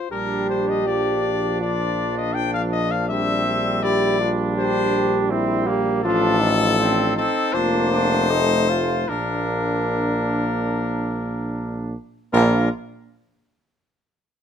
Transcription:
Already playing: F4 C5
0.11 A#1 G3 D4 G4 A#4
0.49 C5
0.68 D#5
0.86 F3 D4 D5
1.61 F4 D5
2.17 D#5
2.35 F3 D4 G5
2.54 F5
2.72 D#5
2.91 F5
3.09 G3 C4 E5
3.46 G3
3.83 E4 G4 D5
4.20 D4 F4
4.57 G4 C5
5.30 C4 E4
5.67 A#3 G4
6.04 A1 F3 D4 F4 A4
6.41 F3 D#4
6.79 C4 D4
7.16 C4 D#4 A4
7.53 F1 A#3 D4 F4 C5
7.92 D4
8.30 A3 D#4 A4
8.69 F4
9.09 A#1 A#3 D4 A#4
12.33 A#1 A#3 D4 F4 A#4

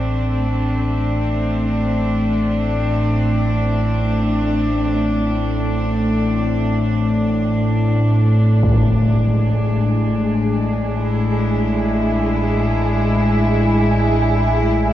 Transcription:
Already playing: A1 A2 A3 C4 D4
8.63 A2 G#4, impact
9.14 G#3
10.97 E4

